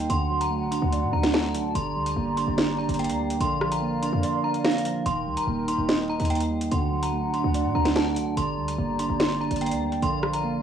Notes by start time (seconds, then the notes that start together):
Already playing: D#3 G3 A#3 D#4 D#5
0.09 D2 D3 D4 F#4 F#5 C6, closed hi-hat
0.30 F#3
0.41 A#5, closed hi-hat
0.50 A3
0.61 C2
0.71 D2 D4 C6, closed hi-hat
0.82 D2
0.92 D5, closed hi-hat
1.03 A2
1.13 D2 D4 A#5
1.23 snare, closed hi-hat
1.33 A3 A5, snare, closed hi-hat
1.54 C2 F#3, closed hi-hat
1.65 D2
1.75 G1 D3 G4 D5 A#5 C6, closed hi-hat
1.96 D2 G3
2.06 A#5, closed hi-hat
2.16 G1 A#3
2.37 D4 C6, closed hi-hat
2.48 G1
2.58 D5, snare, closed hi-hat
2.78 D4 A#5
2.89 G1, closed hi-hat
2.94 closed hi-hat
2.99 A#3 G5, closed hi-hat
3.04 closed hi-hat
3.10 D2, closed hi-hat
3.20 G3
3.30 closed hi-hat
3.41 A#1 D3 A#4 D5 F5 C6, closed hi-hat
3.61 F3, cross-stick
3.72 A#5, closed hi-hat
3.82 A#3
4.03 D4 C6, closed hi-hat
4.13 F2
4.23 D5, closed hi-hat
4.44 D4 A#5
4.54 closed hi-hat
4.65 A#3 F5, snare, closed hi-hat
4.72 closed hi-hat
4.78 closed hi-hat
4.85 F3, closed hi-hat
5.06 D#1 D#3 D#4 A#4 G5 C6, closed hi-hat
5.27 D#2 G3
5.37 D#1 A#5, closed hi-hat
5.47 D#1 A#3
5.68 D#4 C6, closed hi-hat
5.78 D#1
5.89 D#5, snare, closed hi-hat
6.10 D#4 A#5
6.20 D#2, closed hi-hat
6.25 closed hi-hat
6.30 A#3 G5, closed hi-hat
6.35 closed hi-hat
6.41 closed hi-hat
6.51 G3
6.61 closed hi-hat
6.71 D2 D3 D4 F#4 F#5 C6, closed hi-hat
6.92 F#3
7.03 A#5, closed hi-hat
7.12 A3
7.23 C2
7.33 D2 D4 C6, closed hi-hat
7.44 D2
7.54 D5, closed hi-hat
7.65 A2
7.75 D2 D4 A#5
7.85 snare, closed hi-hat
7.96 A3 A5, snare, closed hi-hat
8.16 C2 F#3, closed hi-hat
8.27 D2
8.37 G1 D3 G4 D5 A#5 C6, closed hi-hat
8.58 D2 G3
8.68 A#5, closed hi-hat
8.78 G1 A#3
8.99 D4 C6, closed hi-hat
9.10 G1
9.20 D5, snare, closed hi-hat
9.40 D4 A#5
9.51 G1, closed hi-hat
9.56 closed hi-hat
9.61 A#3 G5, closed hi-hat
9.66 closed hi-hat
9.72 D2, closed hi-hat
9.82 G3
9.92 closed hi-hat
10.03 A#1 D3 A#4 F5 C6, closed hi-hat
10.23 F3, cross-stick
10.34 A#5, closed hi-hat
10.44 A#3